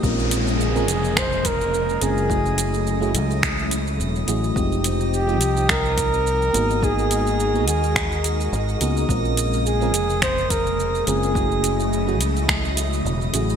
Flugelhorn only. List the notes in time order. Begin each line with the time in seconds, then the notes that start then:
0.61 G#4
1.18 C5
1.46 A#4
2.03 G#4
5.14 G4
5.70 A#4
6.84 G#4
7.68 G#4
9.66 G#4
10.23 C5
10.51 A#4
11.07 G#4